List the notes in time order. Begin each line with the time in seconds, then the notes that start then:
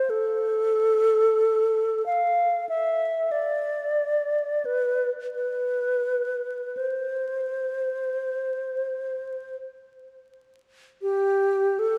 Already playing: C5
0.10 A4
2.06 F5
2.69 E5
3.31 D5
4.65 B4
5.35 B4
6.77 C5
11.02 G4
11.79 A4